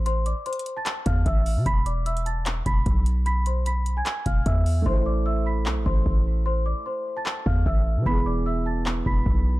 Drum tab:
HH |x-----x-----x-x-x-x-----x-----x-----x-----o-----|x-----x-----x--x--x-----x-----x-----x-----x-----|x-----x-----x-----x-----x-----x-----x-----o-----|------------------------------------------------|
CP |------------------------x-----------------------|------------------------x-----------------------|------------------------x-----------------------|------------------------x-----------------------|
BD |------------------------------o-----o-----------|o-----------------------------o-----o-----------|------------------------------o-----o-----------|o-----------------------------o-----o-----------|

HH |------------------------------------------------|------------------------------------------------|
CP |------------------------x-----------------------|------------------------x-----------------------|
BD |------------------------------o-----o-----------|o-----------------------------o-----o-----------|